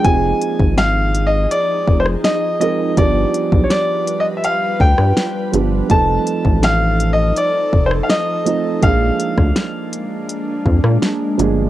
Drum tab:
HH |x-x-x-x-x---x-x-|x-x-x-x-x---x-x-|x-x-x-x-x---x-x-|x-x-x-x-x---x-x-|
SD |----o------ro---|----o------ro---|----o------ro---|---ro------ro---|
BD |o--o------o-----|o--o------o-----|o--o------o-----|o--o------o-----|